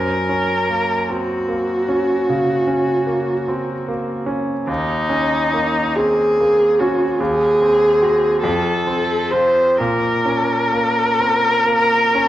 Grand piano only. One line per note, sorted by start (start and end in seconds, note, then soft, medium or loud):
0.00 2.26 F#2 soft
0.29 0.93 C#4 soft
0.70 1.33 A#3 soft
1.10 1.49 C4 soft
1.48 2.13 A#3 soft
1.89 2.53 C#4 soft
2.29 2.93 C#3 soft
2.68 3.32 C#4 soft
3.06 3.72 A#3 soft
3.48 3.89 C4 soft
3.88 4.52 A#3 soft
4.26 4.67 C#4 soft
4.67 7.15 D#2 medium
5.09 5.80 C#4 soft
5.53 6.23 A#3 soft
5.98 6.39 C4 soft
6.40 7.04 A#3 soft
6.81 7.20 C#4 soft
7.20 8.39 D#2 medium
7.61 8.00 C4 soft
8.01 8.39 C4 soft
8.01 8.39 F#4 soft
8.44 9.75 F2 medium
8.87 9.32 C4 soft
9.33 9.76 C4 soft
9.33 9.75 F4 soft
9.80 12.28 A#2 soft
10.25 11.00 C#4 soft
10.72 11.47 A#3 soft
11.20 11.66 C4 soft
11.67 12.28 A#3 soft
12.15 12.28 C#4 soft